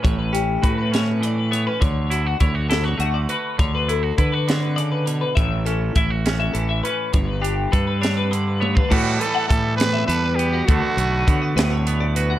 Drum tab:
CC |------------|------------|------------|------------|
HH |x-x-x-x-x-x-|x-x-x-x-x-x-|x-x-x-x-x-x-|x-x-x-x-x-x-|
SD |------o-----|------o-----|------o-----|------o-----|
T1 |------------|------------|------------|------------|
BD |o---o-------|o---o-------|o---o-------|o---o-------|

CC |------------|x-----------|------------|
HH |x-x-x-x-x---|--x-x-x-x-x-|x-x-x-x-x-x-|
SD |------o-----|------o-----|------o-----|
T1 |----------o-|------------|------------|
BD |o---o------o|o---o-------|o---o-------|